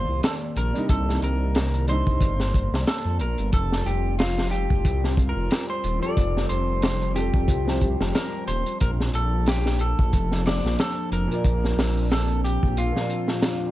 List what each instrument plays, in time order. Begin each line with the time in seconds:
Already playing: ambient pad D#3 A#3 D5, upright piano G3 D4 D#4, clean electric guitar C5
0.08 detuned saw bass C2
0.23 clean electric guitar A4, snare, closed hi-hat
0.56 detuned saw bass A#1, clean electric guitar A#4, closed hi-hat
0.72 upright piano C3 G3, closed hi-hat
0.76 upright piano D4 D#4
0.89 detuned saw bass C2, clean electric guitar A4, kick, closed hi-hat
1.09 snare
1.22 detuned saw bass C2, clean electric guitar A#4, closed hi-hat
1.55 snare, closed hi-hat
1.74 closed hi-hat
1.87 upright piano C3 G3 D4 D#4, clean electric guitar C5, closed hi-hat
2.07 detuned saw bass C2, kick
2.21 detuned saw bass G1, kick, closed hi-hat
2.40 snare
2.54 kick, closed hi-hat
2.72 detuned saw bass C2, snare
2.87 clean electric guitar A4, snare, closed hi-hat
3.05 detuned saw bass F2
3.19 detuned saw bass A#1, clean electric guitar A#4, closed hi-hat
3.38 detuned saw bass G1, closed hi-hat
3.52 detuned saw bass F1, ambient pad G3 C4 F4, clean electric guitar A4, kick, closed hi-hat
3.72 snare
3.86 detuned saw bass F1, clean electric guitar G4, closed hi-hat
4.19 clean electric guitar F4, snare, open hi-hat
4.38 snare
4.51 clean electric guitar G4, closed hi-hat
4.70 detuned saw bass F1, kick
4.85 detuned saw bass C2, kick, closed hi-hat
5.04 snare
5.17 kick, closed hi-hat
5.29 clean electric guitar A#4
5.36 detuned saw bass F1
5.51 snare, closed hi-hat
5.70 clean electric guitar C5
5.84 detuned saw bass D#1, closed hi-hat
6.00 upright piano F3 C4, clean electric guitar D5, closed hi-hat
6.04 upright piano G4 A4
6.17 detuned saw bass F1, kick, closed hi-hat
6.37 snare
6.49 detuned saw bass F1, clean electric guitar C5, closed hi-hat
6.82 snare, closed hi-hat
7.01 closed hi-hat
7.15 upright piano F3 C4 G4 A4, clean electric guitar G4, closed hi-hat
7.34 detuned saw bass F1, kick
7.48 detuned saw bass C2, kick, closed hi-hat
7.65 upright piano F3 C4, snare
7.69 upright piano G4 C5
7.81 kick, closed hi-hat
8.00 detuned saw bass F1, snare
8.15 clean electric guitar A#4, snare, closed hi-hat
8.48 detuned saw bass D#1, clean electric guitar C5, closed hi-hat
8.66 closed hi-hat
8.80 detuned saw bass A#1, ambient pad F3 A#3 D4, clean electric guitar A#4, kick, closed hi-hat
9.01 snare
9.13 detuned saw bass A#1, clean electric guitar A4, closed hi-hat
9.46 clean electric guitar G4, snare, open hi-hat
9.66 snare
9.79 clean electric guitar A4, closed hi-hat
9.99 detuned saw bass A#1, kick
10.13 detuned saw bass F1, kick, closed hi-hat
10.32 snare
10.46 clean electric guitar D5, snare, open hi-hat
10.64 detuned saw bass A#1, snare
10.79 clean electric guitar A4, snare, closed hi-hat
11.11 detuned saw bass F1, clean electric guitar A#4, closed hi-hat
11.27 upright piano A#2 A#3, closed hi-hat
11.32 upright piano F4 D5
11.44 detuned saw bass A#1, ambient pad C4, kick, closed hi-hat
11.65 snare
11.77 detuned saw bass A#1, snare, open hi-hat
12.11 clean electric guitar A4, snare, open hi-hat
12.29 closed hi-hat
12.44 clean electric guitar G4, closed hi-hat
12.63 detuned saw bass A#1, kick
12.76 detuned saw bass A#1, clean electric guitar F4, closed hi-hat
12.92 upright piano A#2 A#3
12.96 upright piano F4 D5, snare
13.10 closed hi-hat
13.28 snare
13.42 snare, closed hi-hat